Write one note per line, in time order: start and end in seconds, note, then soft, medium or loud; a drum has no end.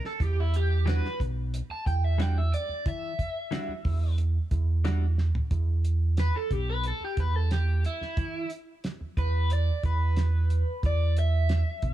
0.05 0.21 A4 medium
0.05 snare soft
0.20 0.99 E2 medium
0.20 0.38 G4 loud
0.20 kick loud
0.20 closed hi-hat medium
0.40 0.54 E4 loud
0.54 0.87 G4 loud
0.54 closed hi-hat medium
0.86 1.06 E3 medium
0.86 1.07 G3 medium
0.86 1.07 D4 medium
0.86 1.08 F#4 medium
0.86 1.20 B4 loud
0.86 snare loud
0.86 closed hi-hat medium
1.05 snare soft
1.20 1.60 B1 loud
1.20 kick medium
1.20 closed hi-hat medium
1.54 closed hi-hat medium
1.69 1.86 A5 loud
1.69 muted fingered electric bass stroke soft
1.86 2.52 E2 medium
1.86 2.04 G5 medium
1.86 kick medium
1.86 closed hi-hat medium
2.04 2.21 E5 medium
2.18 2.39 E3 medium
2.18 2.39 G3 medium
2.18 2.40 D4 medium
2.18 2.40 F#4 medium
2.18 2.38 G5 medium
2.18 snare loud
2.18 closed hi-hat medium
2.38 2.53 E5 medium
2.54 2.85 D5 medium
2.54 closed hi-hat medium
2.69 muted fingered electric bass stroke soft
2.86 3.12 E3 medium
2.86 4.16 E5 loud
2.86 kick loud
2.86 closed hi-hat medium
3.19 kick medium
3.19 closed hi-hat medium
3.51 3.72 E3 medium
3.51 3.72 G3 medium
3.51 3.72 D4 medium
3.51 3.73 F#4 medium
3.51 snare loud
3.51 closed hi-hat medium
3.68 muted fingered electric bass stroke soft
3.85 4.37 E2 medium
3.85 kick medium
3.85 open hi-hat medium
4.18 closed hi-hat medium
4.51 5.30 E2 medium
4.51 kick medium
4.51 closed hi-hat medium
4.85 5.05 E3 medium
4.85 5.05 G3 medium
4.85 5.05 D4 loud
4.85 5.06 F#4 loud
4.85 snare loud
4.85 closed hi-hat medium
5.18 snare medium
5.35 floor tom medium
5.51 6.30 E2 medium
5.51 kick loud
5.51 closed hi-hat medium
5.85 closed hi-hat medium
6.17 6.35 B4 medium
6.17 snare loud
6.17 closed hi-hat medium
6.36 6.52 A4 medium
6.51 6.91 B1 medium
6.51 6.68 G4 medium
6.51 kick medium
6.51 closed hi-hat medium
6.70 6.84 B4 medium
6.84 7.02 A4 medium
6.84 closed hi-hat medium
7.00 muted fingered electric bass stroke soft
7.04 7.18 G4 medium
7.17 7.83 E2 medium
7.17 7.36 B4 medium
7.17 kick medium
7.17 closed hi-hat medium
7.36 7.51 A4 medium
7.51 7.84 G4 medium
7.51 snare medium
7.51 closed hi-hat medium
7.84 8.49 E4 medium
7.84 closed hi-hat medium
8.01 muted fingered electric bass stroke soft
8.01 snare soft
8.17 8.43 E3 loud
8.17 kick loud
8.17 closed hi-hat medium
8.50 closed hi-hat medium
8.84 snare loud
8.84 closed hi-hat medium
9.01 muted fingered electric bass stroke soft
9.17 9.70 E2 medium
9.17 9.50 B4 medium
9.17 kick medium
9.17 closed hi-hat medium
9.50 9.84 D5 medium
9.50 closed hi-hat medium
9.83 10.62 E2 medium
9.83 10.81 B4 medium
9.83 kick medium
9.83 closed hi-hat medium
10.16 snare medium
10.16 closed hi-hat medium
10.50 closed hi-hat medium
10.83 11.62 E2 medium
10.83 11.17 D5 medium
10.83 kick loud
10.83 closed hi-hat medium
11.17 11.94 E5 medium
11.17 closed hi-hat medium
11.49 snare loud
11.49 closed hi-hat medium
11.82 11.94 B1 medium
11.82 kick medium
11.82 closed hi-hat medium